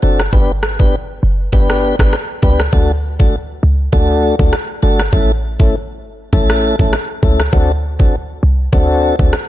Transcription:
0.02 808-style bass F#1, tonewheel organ C4 D4 F#4 A4
0.20 cross-stick
0.33 808-style bass G1, tonewheel organ B3 D4 G4 B4, kick
0.63 cross-stick
0.79 tonewheel organ B3 D4 G4 B4, kick
1.23 808-style bass F#1
1.52 808-style bass G1, tonewheel organ B3 D4 G4 B4, kick
1.70 cross-stick
1.99 808-style bass G1, tonewheel organ B3 D4 G4 B4, kick, cross-stick
2.13 cross-stick
2.42 808-style bass C#2, tonewheel organ B3 D4 G4 B4, kick
2.60 cross-stick
2.73 808-style bass D2, tonewheel organ A3 D4 F#4 A4, kick
3.19 tonewheel organ A3 D4 F#4 A4, kick
3.63 808-style bass C#2
3.93 808-style bass D2, tonewheel organ A3 D4 F#4 A4, kick
4.39 808-style bass D2, tonewheel organ A3 D4 F#4 A4, kick
4.53 cross-stick
4.83 808-style bass G1, tonewheel organ A3 D4 F#4 A4
5.00 cross-stick
5.12 808-style bass A1, tonewheel organ A3 C#4 E4 A4, kick
5.59 tonewheel organ A3 C#4 E4 A4, kick
6.03 808-style bass G1
6.33 808-style bass A1, tonewheel organ A3 C#4 E4 A4, kick
6.50 cross-stick
6.79 808-style bass A1, tonewheel organ A3 C#4 E4 A4, kick
6.93 cross-stick
7.23 808-style bass C#2, tonewheel organ A3 C#4 E4 A4, kick
7.40 cross-stick
7.53 808-style bass D2, tonewheel organ C4 D4 F#4 A4, kick
7.99 tonewheel organ C4 D4 F#4 A4, kick
8.43 808-style bass C2
8.73 808-style bass D2, tonewheel organ C4 D4 F#4 A4, kick
9.19 808-style bass D2, tonewheel organ C4 D4 F#4 A4, kick
9.33 cross-stick

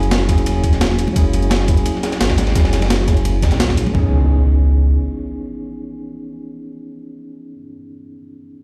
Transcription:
Already playing: sub bass F#1, tine electric piano F#3 A#3 C#4 E4 G#4
0.03 closed hi-hat
0.11 snare, closed hi-hat, ride
0.20 snare
0.26 tine electric piano F#3 A#3 C#4 E4, kick, snare, closed hi-hat, ride
0.31 tine electric piano G#4
0.38 closed hi-hat
0.46 sub bass E1, closed hi-hat, ride
0.64 kick, closed hi-hat, ride
0.73 snare, closed hi-hat
0.81 snare, closed hi-hat, ride
0.90 snare, ride
0.99 closed hi-hat, ride
1.07 ride, high conga
1.13 sub bass F#1, tine electric piano F#3 A#3 C#4, kick, closed hi-hat, ride
1.17 tine electric piano E4 G#4
1.33 closed hi-hat, ride
1.43 closed hi-hat
1.50 snare, closed hi-hat, ride
1.60 snare
1.65 tine electric piano F#3 A#3 C#4, kick, closed hi-hat, ride
1.70 tine electric piano E4 G#4
1.77 closed hi-hat
1.85 closed hi-hat, ride
1.95 snare
2.03 snare, closed hi-hat, ride
2.12 snare, closed hi-hat, ride
2.20 sub bass G#1, snare, closed hi-hat, ride
2.29 kick, snare, ride
2.38 snare, closed hi-hat, ride, high conga
2.47 snare, ride
2.53 sub bass F#1, tine electric piano F#3 A#3 C#4, kick, snare, closed hi-hat, ride
2.57 tine electric piano E4 G#4
2.65 snare, ride
2.73 snare, closed hi-hat, ride
2.81 snare, closed hi-hat, ride, high conga
2.90 snare, closed hi-hat, ride
3.00 snare
3.05 tine electric piano F#3 A#3 C#4, kick, snare, closed hi-hat, ride
3.09 tine electric piano E4 G#4
3.17 closed hi-hat
3.25 closed hi-hat, ride
3.42 sub bass A#1, kick, snare, closed hi-hat, ride
3.51 sub bass A#1, snare, closed hi-hat, ride
3.60 snare, closed hi-hat, ride
3.69 kick, snare, ride
3.76 tine electric piano F#3 A#3 C#4 E4 G#4, closed hi-hat, ride
3.86 ride, high conga
3.91 tine electric piano E3 B3
3.95 sub bass C#2, tine electric piano C#4 D#4, kick, floor tom, impact
3.99 tine electric piano G#4

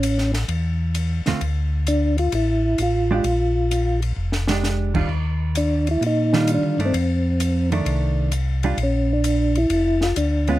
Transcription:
Already playing: tonewheel organ A1 C#4
0.03 hi-hat pedal, ride
0.18 snare
0.34 snare, ride
0.48 tonewheel organ E2, ride
0.95 hi-hat pedal, ride
1.26 tonewheel organ E2, hollow-body jazz guitar D3 A3 C4 F4, snare, ride
1.41 tonewheel organ D2, ride
1.87 tonewheel organ D4, hi-hat pedal, ride
2.18 tonewheel organ F4, ride
2.32 tonewheel organ A1 E4, ride
2.78 tonewheel organ A1, hi-hat pedal, ride
2.82 tonewheel organ F4
3.11 hollow-body jazz guitar G#3 D4 G4, tonewheel organ F4
3.24 tonewheel organ A#1, ride
3.71 hi-hat pedal, ride
4.02 ride
4.17 tonewheel organ F1
4.32 snare
4.48 hollow-body jazz guitar G#3 D4 G4, snare
4.64 snare, hi-hat pedal
4.94 hollow-body jazz guitar D#3 G3 D4 F4, kick, crash
5.09 tonewheel organ D#2
5.55 tonewheel organ D4, hi-hat pedal, ride
5.87 ride
5.91 tonewheel organ E4
6.01 tonewheel organ A#2, ride
6.07 tonewheel organ D#4
6.33 hollow-body jazz guitar D#3 G3 D4 F4, snare
6.47 hi-hat pedal, ride
6.54 tonewheel organ D4
6.63 tonewheel organ D3
6.78 tonewheel organ G2, hollow-body jazz guitar D#3 A3 D4, ride
6.86 tonewheel organ C4
6.94 tonewheel organ F2, ride
7.40 hi-hat pedal, ride
7.72 hollow-body jazz guitar D#3 A3 D4, ride
7.86 tonewheel organ C2, ride
8.32 hi-hat pedal, ride
8.63 hollow-body jazz guitar G3 D4 F4, ride
8.78 tonewheel organ A#1, ride
8.83 tonewheel organ C#4
9.13 tonewheel organ D4
9.24 hi-hat pedal, ride
9.55 tonewheel organ E4, ride
9.70 tonewheel organ F1, ride
10.01 tonewheel organ F4, snare
10.16 tonewheel organ D2 D4, hi-hat pedal, ride
10.47 hollow-body jazz guitar G#3 B3 F4, tonewheel organ C#4, ride

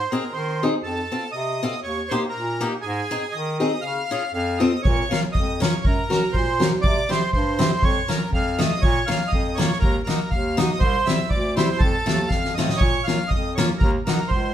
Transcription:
Already playing: accordion C5
0.11 steel-string acoustic guitar C4 D#4 G#4, accordion A#4
0.33 bass clarinet D#3, accordion C5
0.63 steel-string acoustic guitar C4 D#4 G#4
0.83 bass clarinet F2, accordion A4
1.12 steel-string acoustic guitar C4 F4 A4
1.32 bass clarinet C3, accordion D#5
1.63 steel-string acoustic guitar C4 F4 A4
1.83 bass clarinet D#2, accordion C#5
2.08 steel-string acoustic guitar A#3 D#4 G4, accordion C5
2.29 accordion A#4
2.35 bass clarinet A#2
2.61 steel-string acoustic guitar A#3 D#4 G4
2.81 bass clarinet G#2, accordion G#4
3.11 steel-string acoustic guitar C4 D#4 G#4
3.32 bass clarinet D#3, accordion D#5
3.59 steel-string acoustic guitar C4 D#4 G#4, accordion D#5
3.82 bass clarinet C#3, accordion F5
4.11 steel-string acoustic guitar C#4 F4 G#4
4.33 bass clarinet F2, accordion F5
4.58 steel-string acoustic guitar C4 F4 A4, accordion D#5
4.82 bass clarinet A#2, accordion C#5, kick, crash
5.11 steel-string acoustic guitar C#4 F4 A#4, accordion F5, snare
5.32 bass clarinet F2, accordion D#5, kick
5.60 steel-string acoustic guitar C#4 F4 A#4, accordion C#5, snare
5.85 bass clarinet F#2, accordion A#4, kick
6.10 steel-string acoustic guitar C#4 F#4 A#4, accordion A#4, snare
6.33 bass clarinet A#2, accordion C5, kick
6.60 steel-string acoustic guitar C#4 F#4 A#4, snare
6.82 bass clarinet C3, accordion D5, kick
7.09 steel-string acoustic guitar C4 E4 G4, accordion C5, snare
7.33 bass clarinet G2, accordion C5, kick
7.59 steel-string acoustic guitar C4 E4 G4, snare
7.82 bass clarinet F2, accordion C#5, kick
8.08 steel-string acoustic guitar A#3 C#4 F4, accordion A#4, snare
8.32 bass clarinet F2, accordion F5, kick
8.59 steel-string acoustic guitar A3 C4 F4, accordion D#5, snare
8.82 bass clarinet A#2, accordion C#5, kick
9.06 steel-string acoustic guitar A#3 C#4 F4, accordion F5, snare
9.28 accordion D#5
9.32 bass clarinet F2, kick
9.55 steel-string acoustic guitar A#3 C#4, accordion C#5
9.59 steel-string acoustic guitar F4, snare
9.71 snare
9.79 bass clarinet D#2, accordion A#4, kick
10.03 steel-string acoustic guitar A#3, accordion A#4
10.08 steel-string acoustic guitar D#4 F#4, snare
10.30 bass clarinet D#2, accordion F5, kick
10.57 steel-string acoustic guitar A#3 D#4 F#4, accordion D#5, snare
10.79 bass clarinet C2, accordion C5, kick
11.06 steel-string acoustic guitar G3 C4 E4, accordion E5, snare
11.30 bass clarinet D2, accordion D5, kick
11.55 steel-string acoustic guitar G3 C4 E4, accordion C5, snare
11.79 bass clarinet F2, accordion A4, kick
12.06 bass clarinet D#2, steel-string acoustic guitar A3 C4 F4, snare
12.28 bass clarinet F2, accordion F5, kick, snare
12.44 snare
12.54 bass clarinet A2, steel-string acoustic guitar C4, accordion D#5, snare
12.58 steel-string acoustic guitar A3 F4
12.69 snare
12.77 bass clarinet A#2, accordion C#5, kick
13.04 steel-string acoustic guitar C#4 F4, accordion F5, snare
13.08 steel-string acoustic guitar A#3
13.28 bass clarinet F2, accordion D#5, kick
13.55 steel-string acoustic guitar A#3 C#4 F4, accordion C#5, snare
13.78 bass clarinet D#2, accordion A#4, kick
14.06 steel-string acoustic guitar A#3 D#4 F#4, accordion A#4, snare
14.28 bass clarinet C#2, accordion C5, kick

